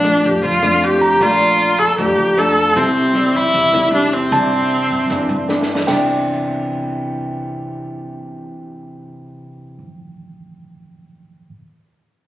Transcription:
Already playing: upright bass A#1, nylon-string guitar A#2, viola D4
0.03 nylon-string guitar F3 A3 D4, cross-stick, closed hi-hat, shaker
0.23 upright bass F2, viola G4, kick, closed hi-hat, shaker
0.41 nylon-string guitar F2, upright bass F2, viola F4, kick, closed hi-hat, shaker
0.61 upright bass F2, nylon-string guitar F3 A3 D4, cross-stick, closed hi-hat, shaker
0.81 viola G4, closed hi-hat, shaker
1.00 tine electric piano A#5, kick, closed hi-hat, shaker
1.19 upright bass A#1, nylon-string guitar A#2 F3 A3 D4, viola F4, kick, cross-stick, closed hi-hat, shaker
1.39 closed hi-hat, shaker
1.59 closed hi-hat, shaker
1.79 upright bass F2, viola A4, kick, closed hi-hat, shaker
1.98 nylon-string guitar F2 F3 A3 D4, upright bass F2, viola G4, kick, cross-stick, closed hi-hat, shaker
2.18 upright bass F2, closed hi-hat, shaker
2.37 nylon-string guitar F3 A3 D4, viola A4, cross-stick, closed hi-hat, shaker
2.56 kick, closed hi-hat, shaker
2.75 upright bass C2, nylon-string guitar C3 G3 E4, viola C4, kick, closed hi-hat, shaker
2.95 closed hi-hat, shaker
3.15 nylon-string guitar G3 B3 E4, cross-stick, closed hi-hat, shaker
3.35 upright bass E2, viola E4, kick, closed hi-hat, shaker
3.54 upright bass E2, nylon-string guitar C3, kick, closed hi-hat, shaker
3.73 upright bass E2, nylon-string guitar G3 B3 E4, cross-stick, closed hi-hat, shaker
3.93 nylon-string guitar G3 B3 E4, viola D4, closed hi-hat, shaker
4.12 viola C4, kick, closed hi-hat, shaker
4.32 upright bass C2, nylon-string guitar C3 E3 D4, tine electric piano A5, kick, cross-stick, closed hi-hat, shaker
4.51 closed hi-hat, shaker
4.70 closed hi-hat, shaker
4.91 upright bass G2, kick, closed hi-hat, shaker
5.10 upright bass G2, nylon-string guitar G2 E3 B3 D4, kick, cross-stick, closed hi-hat, shaker
5.29 upright bass G2, closed hi-hat, shaker
5.49 nylon-string guitar E3 B3 D4, snare, shaker
5.62 snare
5.69 shaker
5.75 snare
5.86 upright bass C2, nylon-string guitar C3 E3, tine electric piano G5, snare, crash, shaker
5.90 nylon-string guitar B3 D4

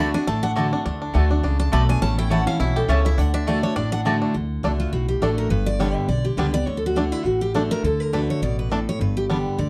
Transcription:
Already playing: upright bass D2, five-string banjo D4
0.00 steel-string acoustic guitar D3 A3 D4 F#4 B5, five-string banjo A3
0.14 five-string banjo D4, steel-string acoustic guitar D4 F#4 G#5
0.27 upright bass A1, steel-string acoustic guitar A2 A5, five-string banjo A3
0.43 five-string banjo D4, steel-string acoustic guitar F#5
0.56 steel-string acoustic guitar D3 A3 D4 F#4, mandolin A3 F#4 D5 A5, five-string banjo A3
0.73 five-string banjo D4, steel-string acoustic guitar D4 F#4
0.86 upright bass D2, steel-string acoustic guitar D3, five-string banjo D4
1.02 five-string banjo D4
1.13 upright bass D2, steel-string acoustic guitar D3 A3 D4 F#4, mandolin A3 F#4 D5 A5, five-string banjo A3
1.30 five-string banjo D4, steel-string acoustic guitar D4 F#4
1.43 upright bass C#2, steel-string acoustic guitar C#3, five-string banjo D4
1.59 five-string banjo D4, steel-string acoustic guitar A5
1.72 upright bass B1, steel-string acoustic guitar B2 B5, mandolin A3 F#4 D5 A5, five-string banjo A3
1.89 five-string banjo D4, steel-string acoustic guitar G#5
2.02 upright bass A1, steel-string acoustic guitar A2 A5, five-string banjo C#4
2.18 five-string banjo E4, steel-string acoustic guitar G5
2.30 steel-string acoustic guitar E3 A3 C#4 E4 F#5, mandolin A3 E4 C#5 A5, five-string banjo A3
2.46 five-string banjo C#4, steel-string acoustic guitar C#4 E4 F5
2.59 upright bass B1, steel-string acoustic guitar B2 E5, five-string banjo E4
2.76 five-string banjo G4, steel-string acoustic guitar A4
2.88 upright bass C#2, steel-string acoustic guitar C#3 C#5, mandolin A3 E4 C#5 A5, five-string banjo C#4
3.05 five-string banjo E4, steel-string acoustic guitar E5
3.18 upright bass D2, steel-string acoustic guitar D3 F#5, five-string banjo D4
3.34 five-string banjo D4, steel-string acoustic guitar E5
3.47 steel-string acoustic guitar D3 A3 D4 F#4 D5, mandolin A3 F#4 D5 A5, five-string banjo A3
3.63 five-string banjo D4, steel-string acoustic guitar C#5
3.76 upright bass A1, steel-string acoustic guitar A2 D5, five-string banjo D4
3.92 five-string banjo D4, steel-string acoustic guitar F#5
4.05 steel-string acoustic guitar D3 A3 D4 F#4, mandolin A3 F#4 D5 A5, five-string banjo A3
4.22 five-string banjo D4
4.34 upright bass D2, steel-string acoustic guitar D3
4.63 upright bass C#2, steel-string acoustic guitar D3 A3 D4 F#4, five-string banjo A3 D4
4.80 steel-string acoustic guitar F4
4.92 upright bass B1, steel-string acoustic guitar A2 F#4
5.08 steel-string acoustic guitar G4
5.20 upright bass A1, steel-string acoustic guitar D3 A3 D4 F#4 A4, five-string banjo A3 D4
5.38 steel-string acoustic guitar A#4
5.49 upright bass G1, steel-string acoustic guitar G2 B4
5.66 steel-string acoustic guitar D5
5.79 steel-string acoustic guitar D3 G3 B3 G4 C#5, five-string banjo G3 B3 D4
5.95 steel-string acoustic guitar E5
6.08 upright bass B1, steel-string acoustic guitar D3 D5
6.25 steel-string acoustic guitar G4
6.37 upright bass C#2, steel-string acoustic guitar D3 G3 B3 G4 B4, five-string banjo G3 B3 D4
6.53 steel-string acoustic guitar B3 G4 D5
6.66 upright bass D2, steel-string acoustic guitar D3 C#5
6.77 steel-string acoustic guitar A4
6.86 steel-string acoustic guitar F#4
6.96 steel-string acoustic guitar D3 A3 D4 F#4, five-string banjo A3 D4
7.12 steel-string acoustic guitar E4
7.25 upright bass A1, steel-string acoustic guitar A2 F#4
7.41 steel-string acoustic guitar G4
7.54 steel-string acoustic guitar D3 A3 D4 F#4 A4, five-string banjo A3 D4
7.71 steel-string acoustic guitar A#4
7.83 upright bass D2, steel-string acoustic guitar D3 A4
8.00 steel-string acoustic guitar A#4
8.13 steel-string acoustic guitar D3 A3 D4 F#4 B4, five-string banjo A3 D4
8.30 steel-string acoustic guitar C#5
8.41 upright bass A1, steel-string acoustic guitar B2 D5
8.59 steel-string acoustic guitar B4
8.71 steel-string acoustic guitar A2 A4, five-string banjo A3 D4
8.89 steel-string acoustic guitar C#5
8.99 upright bass G1, steel-string acoustic guitar G2 B4
9.17 steel-string acoustic guitar G4
9.30 steel-string acoustic guitar D3 G3 B3 G4, five-string banjo G3 B3 D4
9.58 upright bass D2, steel-string acoustic guitar D3 D5

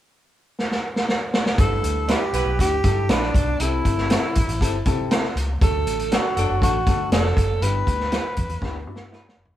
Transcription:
0.59 snare
0.71 snare
0.96 snare
1.09 snare
1.34 snare
1.46 snare
1.58 fingered electric bass G1, upright piano G2 D4 E4 G4 B4, tenor saxophone A4, kick, closed hi-hat
1.83 fingered electric bass D2, closed hi-hat
2.08 clean electric guitar D4 E4 B4, tenor saxophone G4, snare, closed hi-hat
2.33 fingered electric bass B1, horn section G3 B3 E4 B4, closed hi-hat
2.46 fingered electric bass B1
2.59 fingered electric bass D2, upright piano D4 E4 G4 B4, tenor saxophone G4, kick, closed hi-hat
2.84 fingered electric bass G2, upright piano D4 E4 G4 A4, kick, closed hi-hat
3.09 fingered electric bass A#1, clean electric guitar D4 E4 B4, tenor saxophone D4, snare, closed hi-hat
3.22 snare
3.34 fingered electric bass B1, kick, closed hi-hat
3.60 fingered electric bass C2, upright piano C3 C4 E4 G4 A4, tenor saxophone E4, closed hi-hat
3.85 fingered electric bass G1, kick, closed hi-hat
3.98 snare
4.10 clean electric guitar C4 E4 A4, snare, closed hi-hat
4.35 fingered electric bass A1, kick, closed hi-hat
4.48 fingered electric bass A1, closed hi-hat
4.61 fingered electric bass G1, upright piano C4 E4 G4 A4, kick, closed hi-hat
4.85 fingered electric bass C3, upright piano C4 E4 G4 A4, kick, closed hi-hat
5.11 clean electric guitar C4 E4 A4, snare, closed hi-hat
5.24 snare
5.36 fingered electric bass C#2, closed hi-hat
5.61 fingered electric bass D2, upright piano D3 A3 D4 F#4 A4, tenor saxophone A4, kick, closed hi-hat
5.86 fingered electric bass A1, closed hi-hat
5.99 closed hi-hat
6.12 clean electric guitar D4 F#4 A4, tenor saxophone F#4, snare, closed hi-hat
6.37 fingered electric bass F#1, horn section F#3 A3 D4 A4, closed hi-hat
6.49 fingered electric bass F#1
6.62 fingered electric bass A1, upright piano A3 D4 F#4 A4, tenor saxophone F#4, kick, closed hi-hat
6.86 fingered electric bass D3, upright piano A3 D4 F#4 A4, kick, closed hi-hat
7.12 fingered electric bass F1, clean electric guitar D4 F#4 A4, tenor saxophone A4, snare, closed hi-hat
7.25 snare
7.37 fingered electric bass F#1, kick, closed hi-hat
7.62 fingered electric bass G1, upright piano G2 B3 D4 E4 G4, tenor saxophone B4, closed hi-hat
7.87 fingered electric bass D2, kick, closed hi-hat
8.00 snare
8.12 clean electric guitar E4 G4 B4, snare, closed hi-hat
8.37 fingered electric bass E2, kick, closed hi-hat
8.49 fingered electric bass E2, closed hi-hat
8.61 fingered electric bass D2, upright piano B3 D4 E4 G4, kick, snare
8.87 fingered electric bass G2, upright piano B3 D4 E4 F#4 E5
8.96 snare
9.12 clean electric guitar E4 G4 B4, upright piano G5, snare
9.29 snare
9.37 fingered electric bass F#1, upright piano B5
9.45 floor tom

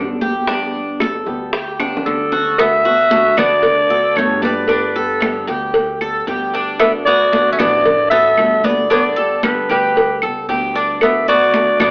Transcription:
Already playing: upright bass G1, nylon-string guitar D3 A3 B3 F#4, cuban tres D4
0.21 cuban tres G4, high bongo, high conga
0.47 nylon-string guitar D3 G3 B3 G4, cuban tres D4, high bongo, high conga
0.75 high conga
1.00 cuban tres A4, high bongo, high conga, claves
1.26 upright bass D2, nylon-string guitar G3 B3 G4, high bongo, high conga
1.53 cuban tres G4, muted nylon-string guitar stroke, high bongo, high conga
1.79 nylon-string guitar G3 B3 G4, cuban tres D4, high bongo, high conga, claves
1.97 low bongo
2.05 upright bass D2, nylon-string guitar D3 G3 B3 G4, koto D3, clarinet A4, high conga
2.32 cuban tres F#4, low bongo
2.58 nylon-string guitar D3 A3 B3 F#4, koto B3, clarinet E5, cowbell, high conga, claves
2.85 nylon-string guitar A3 B3 F#4, cuban tres F#4, high conga
3.10 nylon-string guitar D3 A3 B3 F#4, cowbell, high conga
3.37 upright bass D2, nylon-string guitar A3 B3 F#4, koto B3, cuban tres D4, clarinet D5, cowbell, high conga, low conga, claves
3.63 muted nylon-string guitar stroke, cowbell, high conga
3.90 nylon-string guitar A3 B3 F#4, cuban tres A4, high conga
4.16 upright bass G1, nylon-string guitar D3 A3 B3 F#4, koto A3, clarinet C#5, cowbell, high conga, claves
4.42 koto G3, clarinet B4, cuban tres D5, cowbell, high conga
4.68 nylon-string guitar D3 G3 B3 G4, cuban tres D4, cowbell, high conga
4.96 nylon-string guitar G3 B3 G4, cuban tres A4, high conga
5.21 nylon-string guitar D3 G3 B3 G4, cowbell, high conga, claves
5.47 upright bass D2, nylon-string guitar G3 B3 G4, cuban tres G4, cowbell, high conga
5.74 muted nylon-string guitar stroke, cowbell, high conga
6.01 nylon-string guitar G3 B3 G4, cuban tres A4, high conga, claves
6.27 upright bass D2, nylon-string guitar D3 G3 B3 G4, cuban tres G4, cowbell, high conga
6.54 cuban tres D4, cowbell
6.79 nylon-string guitar D3 A3 B3 F#4, koto B3, clarinet E5, cowbell, high conga, claves
7.05 nylon-string guitar A3 B3 F#4, koto B3, cuban tres F#4, clarinet D5, high conga
7.32 nylon-string guitar D3 A3 B3 F#4, cowbell, high conga
7.52 koto C#4, clarinet E5
7.59 upright bass A1, nylon-string guitar A3 B3 F#4, koto B3, cuban tres D4, clarinet D5, cowbell, high conga, low conga, claves
7.86 muted nylon-string guitar stroke, cowbell, high conga, low conga
8.11 nylon-string guitar A3 B3 F#4, koto B3, cuban tres A4, clarinet E5, high conga
8.37 upright bass G1, nylon-string guitar D3 A3 B3 F#4, cowbell, high conga, claves
8.64 koto B3, cuban tres D5, clarinet D5, cowbell, high conga
8.90 nylon-string guitar D3 G3 B3 G4, koto B3, cuban tres D4, clarinet D5, cowbell, high conga
9.16 nylon-string guitar G3 B3 G4, cuban tres A4, high conga
9.43 nylon-string guitar D3 G3 B3 G4, koto G3, clarinet B4, cowbell, high conga, claves
9.69 upright bass D2, koto G3, nylon-string guitar G3 B3 G4, cuban tres G4, clarinet B4, cowbell, high conga
9.96 muted nylon-string guitar stroke, cowbell, high conga
10.22 upright bass C#2, nylon-string guitar G3 B3 G4, cuban tres A4, high conga, claves
10.48 upright bass D2, nylon-string guitar D3 G3 B3 G4, cuban tres G4, cowbell, high conga
10.75 cuban tres D4, cowbell
11.01 nylon-string guitar D3 A3 B3 F#4, koto B3, clarinet E5, cowbell, high conga, claves
11.28 nylon-string guitar A3 B3 F#4, koto B3, cuban tres F#4, clarinet D5, high conga
11.54 nylon-string guitar D3 A3 B3 F#4, cowbell, high conga
11.80 upright bass A1, nylon-string guitar A3 B3 F#4, koto B3, cuban tres D4, clarinet D5, cowbell, high conga, low conga, claves

